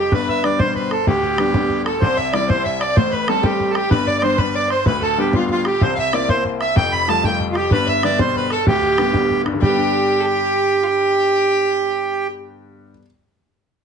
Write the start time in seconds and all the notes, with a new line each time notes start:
Already playing: G4
0.00 G4
0.12 G1 G2 B4, bodhran
0.28 E5, bodhran
0.43 G3 B3 D4 D5, bodhran
0.59 B2 G3 D4 C5, bodhran
0.75 B4, bodhran
0.91 A4, bodhran
1.07 D1 D2 G4, bodhran
1.23 bodhran
1.38 G3 B3 D4, bodhran
1.54 G3 B3 D4, bodhran
1.69 bodhran
1.86 A4, bodhran
2.01 C2 C3 C5, bodhran
2.17 E5, bodhran
2.33 G3 C4 E4 D5, bodhran
2.48 G3 C4 E4 C5, bodhran
2.64 E5, bodhran
2.80 D5, bodhran
2.96 A1 A2 C5, bodhran
3.11 B4, bodhran
3.28 G3 A3 C4 A4, bodhran
3.43 G3 A3 C4 G4, bodhran
3.60 bodhran
3.70 G4 A4
3.75 G4, bodhran
3.91 G1 G2 B4, bodhran
4.07 D5, bodhran
4.19 G3 B3 C5 D5, bodhran
4.23 D4 C5
4.37 G3 B3 D4 B4, bodhran
4.55 D5
4.69 C5, bodhran
4.86 D1 D2 B4, bodhran
5.01 A4, bodhran
5.18 G3 B3 D4 G4
5.33 G3 B3 D4 F4, bodhran
5.49 F4, bodhran
5.65 G4, bodhran
5.81 C2 C3 C5, bodhran
5.95 E5 F5, bodhran
5.99 E5
6.13 A#3 C4 E4 D5, bodhran
6.28 A#3 C4 E4 C5, bodhran
6.45 bodhran
6.61 E5, bodhran
6.76 F1 F2 G5, bodhran
6.92 B5, bodhran
7.08 F3 G3 A3 A5, bodhran
7.24 F3 G3 A3 G5, bodhran
7.40 bodhran
7.52 F4 G4, bodhran
7.71 G1 G2 B4, bodhran
7.87 E5, bodhran
8.03 D3 G3 B3 D5, bodhran
8.18 B2 D3 G3 C5, bodhran
8.35 B4, bodhran
8.50 A4, bodhran
8.67 D1 D2 G4, bodhran
8.82 bodhran
8.98 D3 G3 B3, bodhran
9.13 D3 G3 B3, bodhran
9.30 bodhran
9.46 G2, bodhran
9.53 D3
9.61 G3 G4, bodhran
9.69 B3
9.77 D4
10.20 A4
10.25 G4
10.83 F4 G4